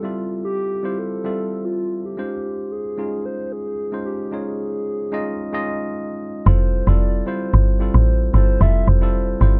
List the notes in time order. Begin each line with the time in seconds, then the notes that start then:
Already playing: G3 C4 E4 F4 G4
0.03 G3 C4 F4 A4 E5
0.45 G4
0.83 G3 C4 E4 F4 C5
0.99 A4
1.24 G3 C4 F4 A4 E5
1.65 F4
2.06 G4
2.17 G#3 C#4 D#4 F4 C5
2.72 G#4
2.97 G#3 C#4 D#4 F4 G#4
3.25 C5
3.52 G#4
3.92 G#3 C#4 D#4 F4 C5
4.06 G4
4.31 G#3 C#4 D#4 F4 G#4 C#5
5.12 G#3 C#4 D#4 F4 D#5
5.52 G#3 C#4 D#4 F4 D#5
6.46 F1 G3 C4 E4 F4 A4 C5
6.86 F1 G3 C4 E4 F4 A4 D5
7.26 G3 C4 E4 F4 C5
7.54 G1
7.80 G3 C4 E4 F4 A4
7.94 A1 C5
8.33 G1 G3 C4 E4 F4 A4 C5
8.60 F1 G3 C4 E4 F4 A4 E5
8.87 F1 C5
9.01 G3 C4 E4 F4 A4
9.40 G1 G3 C4 E4 F4 C5